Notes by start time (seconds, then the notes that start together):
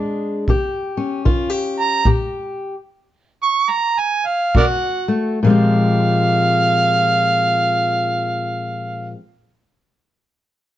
Already playing: A#2 G#3 D4 G#4
0.48 D#3 G4, kick
0.97 C#4
1.25 D#3 F4, kick
1.50 G4
1.80 A#5
2.05 A#2 G4, kick
3.43 C#6
3.71 A#5
3.99 G#5
4.27 F5
4.55 B2 F#4 A#4 D5 F#5, kick
5.08 A3
5.43 A#2 F3 G#3 F5
5.49 C4 G4